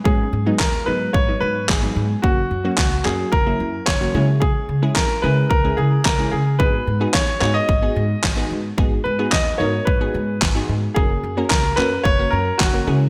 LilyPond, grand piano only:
\new Staff \with { instrumentName = "Grand piano" } { \time 4/4 \key gis \minor \tempo 4 = 110 gis'4 ais'8 b'8 cis''8 b'8 gis'8. r16 | fis'4 fis'8 gis'8 ais'4 cis''8. r16 | gis'4 ais'8 b'8 ais'8 gis'8 ais'8 gis'8 | b'4 cis''8 cis''16 dis''4.~ dis''16 r8 |
r8 b'8 dis''8 cis''8 b'4. r8 | gis'4 ais'8 b'8 cis''8 ais'8 fis'8. r16 | }